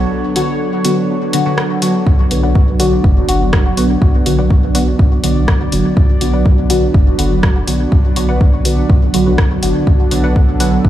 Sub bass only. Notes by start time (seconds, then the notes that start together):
2.07 B1
3.04 F#1
3.29 F#1
3.77 B1
4.02 B1
4.99 B1
5.24 B1
5.72 F#1
5.97 B1
6.94 F#1
7.19 F#1
7.68 B1
7.92 B1
8.90 B1
9.14 B1
9.63 F#1
9.87 B1
10.85 F#1